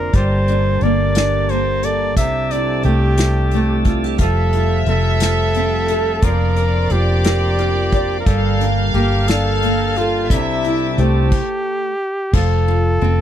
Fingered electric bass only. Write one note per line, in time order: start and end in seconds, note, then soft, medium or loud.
0.14 0.77 G1 loud
0.82 2.17 G1 medium
2.17 2.80 C2 medium
2.85 4.16 C2 loud
4.19 4.83 F1 medium
4.86 6.18 F1 medium
6.23 6.87 F1 medium
6.91 8.22 F1 medium
8.27 8.90 G1 medium
8.94 10.30 G1 medium
10.30 10.94 C2 medium
10.98 11.30 C2 loud
12.34 12.97 F1 loud
13.02 13.21 F1 loud